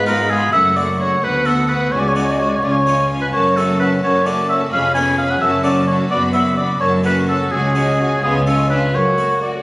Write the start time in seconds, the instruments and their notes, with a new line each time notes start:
Already playing: double bass section G#1, harpsichord G#2, cello section G#2
0.06 harpsichord G#3 B3 F4, viola section G#3, violin section F4 B5, oboe A#4
0.30 viola section G#3, violin section F4 B5, oboe G#4
0.52 double bass section F#1, harpsichord F#2, cello section F#2, viola section A3, violin section F#4 F#5, oboe E5
0.75 harpsichord A3 F#4, viola section A3, violin section F#4 F#5, oboe D5
0.99 viola section A3, violin section F#4 F#5, oboe C#5
1.21 harpsichord D2, double bass section D2, cello section D2, viola section B3, violin section F#4 F#5, oboe B4
1.45 harpsichord B3 F#4, viola section B3, violin section F#4 F#5, oboe A4
1.69 viola section B3, violin section F#4 F#5, oboe B4
1.92 harpsichord C#2, double bass section C#2, cello section C#2, viola section G#3, violin section F#4 G#5, oboe C#5
1.99 oboe D5
2.08 oboe C#5
2.15 harpsichord G#3 C#4 F#4, viola section G#3, violin section F#4 G#5, oboe D5
2.24 oboe C#5
2.30 oboe D5
2.39 viola section G#3, violin section F#4 G#5, oboe C#5
2.49 oboe D5
2.55 oboe C#5
2.62 double bass section C#2, harpsichord C#2, cello section C#2, viola section C#4, violin section F4 G#5, oboe D5
2.71 oboe C#5
2.86 harpsichord G#3 C#4 F4, viola section C#4, violin section F4 G#5
3.10 viola section C#4, violin section F4 G#5
3.21 oboe B4
3.33 double bass section F#1, harpsichord F#2, cello section F#2, viola section C#4, violin section F#4 A5, oboe C#5
3.56 harpsichord A3 C#4 F#4, viola section C#4, violin section F#4 A5, oboe A4
3.79 viola section C#4, violin section F#4 A5, oboe B4
4.02 double bass section F#1, cello section F#2, harpsichord F#2, viola section C#4, violin section F#4 A5, oboe C#5
4.25 harpsichord A3 C#4 F#4, viola section C#4, violin section F#4 A5, oboe D5
4.48 viola section C#4, violin section F#4 A5, oboe E5
4.71 double bass section F1, harpsichord F2, cello section F2, viola section C#4, violin section G#4 B5, oboe F5
4.94 harpsichord B3 C#4 G#4, viola section C#4, violin section G#4 B5, oboe G#5
5.18 viola section C#4, violin section G#4 B5, oboe F5
5.30 oboe F#5
5.41 double bass section F#1, harpsichord F#2, cello section F#2, viola section C#4, violin section F#4 A5, oboe E5
5.63 harpsichord A3 C#4 F#4, viola section C#4, violin section F#4 A5, oboe D5
5.87 viola section C#4, violin section F#4 A5, oboe C#5
6.10 double bass section F#1, harpsichord F#2, cello section F#2, viola section B3, violin section F#4 B5, oboe D5
6.33 harpsichord B3 F#4, viola section B3, violin section F#4 B5, oboe E5
6.57 viola section B3, violin section F#4 B5, oboe D5
6.80 double bass section F#1, harpsichord F#2, cello section F#2, viola section C#4, violin section F#4 A5, oboe C#5
7.03 harpsichord A3 C#4 F#4, viola section C#4, violin section F#4 A5, oboe B4
7.26 viola section C#4, violin section F#4 A5, oboe A4
7.50 harpsichord C#2, double bass section C#2, cello section C#2, viola section C#4, violin section F#4 G#5, oboe G#4
7.74 harpsichord G#3 C#4 F#4, viola section C#4, violin section F#4 G#5
7.99 viola section C#4, violin section F#4 G#5
8.23 double bass section C#2, harpsichord C#2, cello section C#2, violin section B3 F4 G#5, viola section C#4, oboe G#4
8.46 harpsichord G#3 C#4 F4, viola section C#4, violin section C#4 F4 G#5, oboe A4
8.69 viola section C#4, violin section D4 F4 G#5, oboe B4
8.94 harpsichord F#2, cello section F#2, violin section F#4, oboe C#5
9.17 harpsichord A3 F#4
9.41 violin section F#4 A5, viola section A4, oboe D5